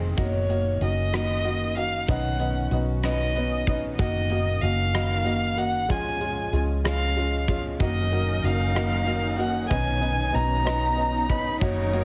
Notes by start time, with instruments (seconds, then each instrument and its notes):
Already playing: fingered electric bass F1, string section C3 D#3 G#3, steel-string acoustic guitar D#3 G#3 C4, upright piano C4 D#4 G#4
0.17 fingered electric bass F#1, steel-string acoustic guitar D#3, upright piano A#3 D#4 F#4, kick, closed hi-hat
0.22 violin C#5
0.49 steel-string acoustic guitar A#3, upright piano A#3 D#4 F#4, closed hi-hat
0.81 fingered electric bass F#1, upright piano A#3 D#4 F#4, steel-string acoustic guitar C#4, violin D#5, closed hi-hat
1.12 steel-string acoustic guitar D#3, upright piano A#3 D#4 F#4, cross-stick, closed hi-hat
1.44 steel-string acoustic guitar A#3, upright piano A#3 D#4 F#4, closed hi-hat
1.76 steel-string acoustic guitar D#3, upright piano A#3 D#4 F#4, violin F5, closed hi-hat
2.08 fingered electric bass B1, steel-string acoustic guitar D#3, upright piano B3 C#4 D#4, violin F#5, kick, closed hi-hat
2.39 upright piano B3 C#4 D#4, steel-string acoustic guitar C#4, closed hi-hat
2.71 fingered electric bass B1, upright piano B3 C#4 D#4, steel-string acoustic guitar F#4, closed hi-hat
3.03 steel-string acoustic guitar B3, upright piano B3 C#4 D#4, violin D#5, cross-stick, closed hi-hat
3.35 upright piano B3 C#4 D#4, steel-string acoustic guitar C#4, closed hi-hat
3.67 steel-string acoustic guitar B3, upright piano B3 C#4 D#4, kick, closed hi-hat
3.97 fingered electric bass F#1, steel-string acoustic guitar D#3, upright piano A#3 D#4 F#4, violin D#5, kick, closed hi-hat
4.30 steel-string acoustic guitar A#3, upright piano A#3 D#4 F#4, closed hi-hat
4.62 fingered electric bass F#1, upright piano A#3 D#4 F#4, steel-string acoustic guitar C#4, violin F5, closed hi-hat
4.94 steel-string acoustic guitar D#3, upright piano A#3 D#4 F#4, cross-stick, closed hi-hat
5.25 upright piano A#3 D#4 F#4, steel-string acoustic guitar A#3, closed hi-hat
5.57 steel-string acoustic guitar D#3, upright piano A#3 D#4 F#4, violin F#5, closed hi-hat
5.89 fingered electric bass C#2, steel-string acoustic guitar F3, upright piano G#3 C#4 F4, violin G#5, kick, closed hi-hat
6.20 upright piano G#3 C#4 F4, steel-string acoustic guitar G#3, closed hi-hat
6.53 fingered electric bass C#2, upright piano G#3 C#4 F4, steel-string acoustic guitar C#4, closed hi-hat
6.84 steel-string acoustic guitar F3, upright piano G#3 C#4 F4, violin F5, cross-stick, closed hi-hat
7.16 upright piano G#3 C#4 F4, steel-string acoustic guitar G#3, closed hi-hat
7.48 steel-string acoustic guitar F3, upright piano G#3 C#4 F4, kick, closed hi-hat
7.79 fingered electric bass F#1, steel-string acoustic guitar D#3, string section F#3 C#4 D#4 A#4, upright piano A#3 D#4 F#4, violin D#5, kick, closed hi-hat
8.12 upright piano A#3 D#4 F#4, steel-string acoustic guitar A#3, closed hi-hat
8.43 fingered electric bass F#1, upright piano A#3 D#4 F#4, steel-string acoustic guitar C#4, violin F5, closed hi-hat
8.75 steel-string acoustic guitar D#3, upright piano A#3 D#4 F#4, cross-stick, closed hi-hat
9.07 steel-string acoustic guitar A#3, upright piano D#4 F#4, closed hi-hat
9.38 steel-string acoustic guitar D#3, upright piano A#3 D#4 F#4, violin F#5, closed hi-hat
9.70 fingered electric bass B1, steel-string acoustic guitar D#3, upright piano B3 C#4 D#4, string section B3 D#4, violin G#5, kick, closed hi-hat
10.01 upright piano B3 C#4 D#4, steel-string acoustic guitar C#4, closed hi-hat
10.32 fingered electric bass B1, upright piano B3 C#4 D#4, steel-string acoustic guitar F#4, violin A#5, closed hi-hat
10.65 upright piano B3 C#4 D#4, steel-string acoustic guitar B3, cross-stick, closed hi-hat
10.97 upright piano B3 C#4 D#4, steel-string acoustic guitar C#4, closed hi-hat
11.29 upright piano B3 C#4 D#4, violin B5, kick, closed hi-hat
11.61 fingered electric bass F#1, steel-string acoustic guitar D#3, string section F#3 C#4 A#4, upright piano A#3 D#4 F#4, violin C#5, kick, closed hi-hat
11.93 steel-string acoustic guitar A#3, upright piano A#3 D#4 F#4, closed hi-hat